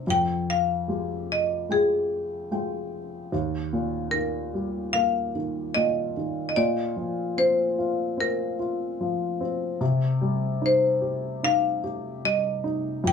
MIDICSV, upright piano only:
0, 0, Header, 1, 2, 480
1, 0, Start_track
1, 0, Key_signature, -3, "major"
1, 0, Tempo, 810811
1, 43, Time_signature, 4, 2, 24, 8
1, 7771, End_track
2, 0, Start_track
2, 0, Title_t, "Upright piano"
2, 0, Program_c, 0, 0
2, 0, Control_c, 0, 64, 127
2, 43, Note_on_c, 0, 41, 58
2, 50, Control_c, 0, 64, 0
2, 137, Control_c, 0, 64, 127
2, 521, Note_on_c, 0, 56, 37
2, 524, Note_on_c, 0, 65, 34
2, 526, Note_on_c, 0, 67, 41
2, 988, Note_off_c, 0, 56, 0
2, 989, Note_off_c, 0, 65, 0
2, 990, Note_off_c, 0, 67, 0
2, 1001, Note_on_c, 0, 56, 32
2, 1005, Note_on_c, 0, 65, 31
2, 1010, Note_on_c, 0, 79, 37
2, 1468, Note_off_c, 0, 56, 0
2, 1470, Note_off_c, 0, 65, 0
2, 1472, Note_off_c, 0, 79, 0
2, 1488, Note_on_c, 0, 56, 38
2, 1490, Note_on_c, 0, 65, 35
2, 1492, Note_on_c, 0, 79, 44
2, 1939, Note_off_c, 0, 41, 0
2, 1951, Note_off_c, 0, 56, 0
2, 1952, Note_off_c, 0, 65, 0
2, 1953, Note_off_c, 0, 79, 0
2, 1968, Note_on_c, 0, 39, 57
2, 1971, Control_c, 0, 64, 0
2, 2088, Control_c, 0, 64, 127
2, 2208, Note_on_c, 0, 46, 47
2, 2446, Note_on_c, 0, 51, 43
2, 2687, Note_on_c, 0, 55, 46
2, 2931, Note_on_c, 0, 58, 45
2, 3142, Note_off_c, 0, 46, 0
2, 3160, Note_off_c, 0, 51, 0
2, 3169, Note_on_c, 0, 51, 45
2, 3409, Note_on_c, 0, 46, 50
2, 3621, Note_off_c, 0, 55, 0
2, 3644, Note_off_c, 0, 51, 0
2, 3653, Note_on_c, 0, 51, 48
2, 3862, Note_off_c, 0, 39, 0
2, 3863, Note_off_c, 0, 58, 0
2, 3872, Note_off_c, 0, 46, 0
2, 3881, Note_off_c, 0, 51, 0
2, 3888, Note_on_c, 0, 46, 61
2, 3890, Control_c, 0, 64, 0
2, 3992, Control_c, 0, 64, 127
2, 4122, Note_on_c, 0, 53, 43
2, 4366, Note_on_c, 0, 60, 45
2, 4607, Note_on_c, 0, 65, 51
2, 4830, Note_off_c, 0, 60, 0
2, 4839, Note_on_c, 0, 60, 50
2, 5059, Note_off_c, 0, 53, 0
2, 5078, Note_off_c, 0, 65, 0
2, 5087, Note_on_c, 0, 65, 48
2, 5332, Note_on_c, 0, 53, 53
2, 5559, Note_off_c, 0, 60, 0
2, 5568, Note_on_c, 0, 60, 53
2, 5782, Note_off_c, 0, 46, 0
2, 5783, Note_off_c, 0, 65, 0
2, 5793, Note_off_c, 0, 53, 0
2, 5798, Note_off_c, 0, 60, 0
2, 5805, Note_on_c, 0, 48, 65
2, 5812, Control_c, 0, 64, 0
2, 5914, Control_c, 0, 64, 127
2, 6047, Note_on_c, 0, 55, 54
2, 6285, Note_on_c, 0, 63, 49
2, 6521, Note_on_c, 0, 67, 50
2, 6759, Note_off_c, 0, 63, 0
2, 6768, Note_on_c, 0, 63, 54
2, 6981, Note_off_c, 0, 55, 0
2, 6999, Note_off_c, 0, 67, 0
2, 7008, Note_on_c, 0, 67, 52
2, 7248, Note_on_c, 0, 55, 48
2, 7473, Note_off_c, 0, 63, 0
2, 7482, Note_on_c, 0, 63, 52
2, 7701, Note_off_c, 0, 48, 0
2, 7704, Note_off_c, 0, 67, 0
2, 7711, Note_off_c, 0, 55, 0
2, 7715, Note_off_c, 0, 63, 0
2, 7719, Note_on_c, 0, 41, 65
2, 7729, Control_c, 0, 64, 0
2, 7771, Note_off_c, 0, 41, 0
2, 7771, End_track
0, 0, End_of_file